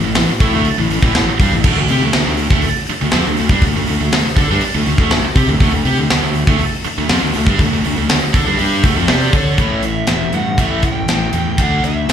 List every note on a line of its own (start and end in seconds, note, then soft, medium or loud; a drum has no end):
0.04 0.16 A1 medium
0.04 0.16 A2 medium
0.04 0.17 E3 medium
0.15 0.28 A1 medium
0.15 0.28 A2 medium
0.15 0.30 E3 medium
0.15 snare loud
0.15 open hi-hat medium
0.29 muted fingered electric bass stroke soft
0.29 muted distorted electric guitar stroke medium
0.40 0.52 A2 medium
0.40 0.53 A3 medium
0.40 0.53 E4 loud
0.40 kick loud
0.40 open hi-hat medium
0.53 0.65 D2 loud
0.53 0.65 D3 medium
0.53 0.65 A3 loud
0.65 muted fingered electric bass stroke soft
0.65 muted distorted electric guitar stroke medium
0.65 open hi-hat medium
0.78 0.90 A1 medium
0.78 0.91 A2 medium
0.78 0.92 E3 medium
0.90 1.01 A1 medium
0.90 1.03 A2 medium
0.90 1.04 E3 medium
0.90 open hi-hat medium
1.02 1.14 A1 medium
1.02 1.14 A2 medium
1.02 1.15 E3 loud
1.02 kick loud
1.14 1.27 A1 medium
1.14 1.28 A2 medium
1.14 1.29 E3 medium
1.14 snare loud
1.14 open hi-hat medium
1.29 muted fingered electric bass stroke soft
1.29 muted distorted electric guitar stroke medium
1.39 1.51 G2 medium
1.39 1.53 G3 loud
1.39 1.53 D4 loud
1.39 kick loud
1.39 open hi-hat medium
1.53 1.64 A1 medium
1.53 1.66 A2 medium
1.53 1.66 E3 medium
1.64 1.76 D2 loud
1.64 1.77 D3 medium
1.64 1.78 A3 loud
1.64 kick loud
1.64 crash loud
1.77 1.89 D2 medium
1.77 1.90 D3 medium
1.77 1.90 A3 medium
1.88 2.01 C3 loud
1.88 2.02 C4 medium
1.88 2.02 G4 loud
1.88 open hi-hat medium
2.01 2.13 D2 medium
2.01 2.14 D3 medium
2.01 2.15 A3 medium
2.13 2.26 D2 medium
2.13 2.27 D3 medium
2.13 2.28 A3 medium
2.13 snare loud
2.13 open hi-hat medium
2.27 2.50 D2 medium
2.27 2.48 D3 medium
2.27 2.48 A3 medium
2.37 open hi-hat medium
2.50 2.63 D2 medium
2.50 2.64 D3 medium
2.50 2.64 A3 loud
2.50 kick loud
2.62 muted fingered electric bass stroke soft
2.62 muted distorted electric guitar stroke medium
2.62 open hi-hat medium
2.86 muted fingered electric bass stroke soft
2.86 muted distorted electric guitar stroke medium
2.86 open hi-hat medium
3.01 3.13 D2 medium
3.01 3.14 D3 medium
3.01 3.14 A3 medium
3.11 3.25 F2 loud
3.11 3.26 F3 medium
3.11 3.26 C4 loud
3.11 snare loud
3.11 open hi-hat medium
3.27 3.38 D2 medium
3.27 3.38 D3 medium
3.27 3.39 A3 medium
3.37 3.49 D2 medium
3.37 3.52 D3 medium
3.37 3.51 A3 medium
3.37 open hi-hat medium
3.49 3.61 G2 loud
3.49 3.63 G3 medium
3.49 3.64 D4 loud
3.49 kick loud
3.61 3.74 D2 medium
3.61 3.76 D3 medium
3.61 3.75 A3 medium
3.61 kick medium
3.61 open hi-hat medium
3.76 3.87 D2 medium
3.76 3.89 D3 medium
3.76 3.89 A3 medium
3.86 4.00 D2 medium
3.86 4.01 D3 medium
3.86 open hi-hat medium
3.91 4.01 A3 medium
4.01 4.12 D2 medium
4.01 4.13 D3 medium
4.01 4.13 A3 medium
4.12 4.24 D2 medium
4.12 4.25 D3 medium
4.12 4.26 A3 medium
4.12 snare loud
4.12 open hi-hat medium
4.26 muted fingered electric bass stroke soft
4.26 muted distorted electric guitar stroke medium
4.36 4.48 D3 medium
4.36 4.49 D4 medium
4.36 4.50 A4 loud
4.36 kick loud
4.36 open hi-hat medium
4.50 4.61 G2 loud
4.50 4.62 G3 loud
4.50 4.62 D4 loud
4.61 muted fingered electric bass stroke soft
4.61 muted distorted electric guitar stroke medium
4.61 open hi-hat medium
4.75 4.86 D2 medium
4.75 4.86 D3 medium
4.75 4.87 A3 medium
4.86 4.98 D2 medium
4.86 4.98 D3 medium
4.86 4.99 A3 medium
4.86 open hi-hat medium
4.98 5.10 D2 loud
4.98 5.11 D3 loud
4.98 5.11 A3 loud
4.98 kick loud
5.10 5.22 D2 medium
5.10 5.23 D3 medium
5.10 5.25 A3 medium
5.10 snare loud
5.10 open hi-hat medium
5.23 muted fingered electric bass stroke soft
5.23 muted distorted electric guitar stroke medium
5.35 5.47 C3 medium
5.35 5.48 C4 loud
5.35 5.48 G4 loud
5.35 kick loud
5.35 open hi-hat medium
5.48 5.60 D2 medium
5.48 5.60 D3 medium
5.48 5.61 A3 medium
5.60 5.72 D2 loud
5.60 5.71 D3 loud
5.60 5.72 A3 loud
5.60 kick loud
5.60 open hi-hat medium
5.72 5.85 D2 medium
5.72 5.86 D3 medium
5.72 5.85 A3 medium
5.85 5.97 C3 medium
5.85 5.98 C4 loud
5.85 5.98 G4 loud
5.85 open hi-hat medium
5.98 6.10 D2 medium
5.98 6.09 D3 medium
5.98 6.09 A3 medium
6.10 6.22 D2 medium
6.10 6.22 D3 medium
6.10 6.22 A3 medium
6.10 snare loud
6.10 open hi-hat medium
6.23 6.46 D2 medium
6.23 6.43 D3 medium
6.23 6.43 A3 medium
6.35 open hi-hat medium
6.47 6.59 D2 loud
6.47 6.59 D3 loud
6.47 6.60 A3 loud
6.47 kick loud
6.59 muted distorted electric guitar stroke medium
6.59 muted fingered electric bass stroke soft
6.59 open hi-hat medium
6.84 muted fingered electric bass stroke soft
6.84 muted distorted electric guitar stroke medium
6.84 open hi-hat medium
6.98 7.09 D2 medium
6.98 7.10 D3 medium
6.98 7.10 A3 medium
7.09 7.22 F2 loud
7.09 7.22 F3 medium
7.09 7.22 C4 medium
7.09 snare loud
7.09 open hi-hat medium
7.23 7.34 D2 medium
7.23 7.34 D3 medium
7.23 7.34 A3 medium
7.33 7.46 D2 medium
7.33 7.47 D3 medium
7.33 7.46 A3 medium
7.33 open hi-hat medium
7.46 7.58 G2 loud
7.46 7.59 G3 medium
7.46 7.59 D4 loud
7.46 kick loud
7.59 7.71 D2 medium
7.59 7.72 D3 medium
7.59 7.73 A3 medium
7.59 kick medium
7.59 open hi-hat medium
7.72 7.84 D2 medium
7.72 7.84 D3 medium
7.72 7.84 A3 medium
7.84 7.97 D2 medium
7.84 7.96 D3 medium
7.84 7.97 A3 medium
7.84 open hi-hat medium
7.97 8.09 D2 medium
7.97 8.09 D3 medium
7.97 8.09 A3 medium
8.09 8.21 D2 medium
8.09 8.21 D3 medium
8.09 8.22 A3 medium
8.09 snare loud
8.09 open hi-hat loud
8.22 muted fingered electric bass stroke soft
8.22 muted distorted electric guitar stroke medium
8.34 8.46 D3 medium
8.34 8.46 D4 medium
8.34 8.47 A4 loud
8.34 kick loud
8.34 open hi-hat medium
8.47 8.59 G2 medium
8.47 8.59 G3 loud
8.47 8.60 D4 loud
8.59 8.83 G2 medium
8.59 8.84 G3 loud
8.59 8.84 D4 loud
8.59 8.85 G4 loud
8.59 open hi-hat medium
8.83 8.95 D2 loud
8.83 8.96 D3 medium
8.83 8.97 A3 medium
8.83 kick loud
8.83 open hi-hat medium
8.97 9.08 F2 medium
8.97 9.08 F3 medium
8.97 9.09 C4 loud
9.08 9.32 C3 loud
9.08 9.34 C4 medium
9.08 9.34 G4 medium
9.08 9.34 C5 loud
9.08 9.35 D5 medium
9.08 snare loud
9.08 open hi-hat medium
9.33 9.57 D3 medium
9.33 9.58 D4 medium
9.33 9.59 A4 loud
9.33 9.86 C#5 medium
9.33 9.59 D5 loud
9.33 kick loud
9.33 open hi-hat medium
9.58 10.02 A1 medium
9.58 9.82 A2 medium
9.58 9.82 E3 loud
9.58 9.82 A3 loud
9.58 kick loud
9.58 closed hi-hat medium
9.83 10.06 A2 medium
9.83 10.06 E3 medium
9.83 10.31 E5 medium
9.83 closed hi-hat medium
10.07 10.31 E1 medium
10.07 10.31 A2 medium
10.07 10.31 E3 medium
10.07 snare loud
10.07 closed hi-hat medium
10.33 10.56 G2 medium
10.33 10.56 A2 medium
10.33 10.57 E3 medium
10.33 10.59 F#5 medium
10.33 closed hi-hat medium
10.58 11.02 A1 medium
10.58 10.82 A2 medium
10.58 10.82 E3 loud
10.58 10.82 A3 loud
10.58 10.84 E5 medium
10.58 kick medium
10.58 closed hi-hat medium
10.83 11.06 A2 medium
10.83 11.06 E3 medium
10.83 11.61 G5 medium
10.83 kick medium
10.83 closed hi-hat medium
11.08 11.31 A1 medium
11.08 11.31 A2 medium
11.08 11.32 E3 medium
11.08 snare loud
11.08 closed hi-hat medium
11.33 11.56 E2 medium
11.33 11.57 A2 medium
11.33 11.57 E3 medium
11.33 closed hi-hat medium
11.58 11.81 D2 loud
11.58 11.83 D3 medium
11.58 11.83 A3 loud
11.58 11.83 D4 loud
11.58 11.84 F#5 medium
11.58 kick loud
11.58 closed hi-hat medium
11.84 12.06 D2 medium
11.84 12.07 D3 medium
11.84 12.07 A3 medium
11.84 12.13 E5 medium
11.84 closed hi-hat medium
12.09 12.13 D2 medium
12.09 12.13 D3 medium
12.09 12.13 A3 medium
12.09 closed hi-hat loud